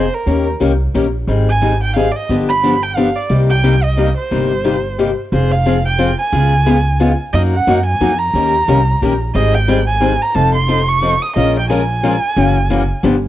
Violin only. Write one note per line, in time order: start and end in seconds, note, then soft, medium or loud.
0.00 0.15 C5 medium
0.14 0.47 A#4 medium
1.49 1.80 G#5 medium
1.83 1.95 G5 medium
1.96 2.13 F5 medium
2.12 2.17 D5 medium
2.16 2.29 D#5 medium
2.49 2.84 B5 medium
2.83 2.97 G5 medium
2.96 3.18 F5 medium
3.16 3.30 D5 medium
3.50 3.85 G5 medium
3.83 4.17 D#5 medium
4.17 5.14 C5 medium
5.33 5.53 C5 medium
5.52 5.84 F5 medium
5.85 6.16 G5 medium
6.19 7.16 G#5 medium
7.33 7.42 D#5 medium
7.54 7.85 F#5 medium
7.86 8.20 G#5 medium
8.18 9.20 A#5 medium
9.35 9.56 D#5 medium
9.54 9.86 G5 medium
9.87 10.23 G#5 medium
10.22 10.36 A#5 medium
10.34 10.54 A5 loud
10.54 10.90 C6 medium
10.88 11.23 C#6 loud
11.22 11.36 D#6 loud
11.36 11.55 D#5 loud
11.59 11.69 G5 medium
11.70 13.00 G#5 medium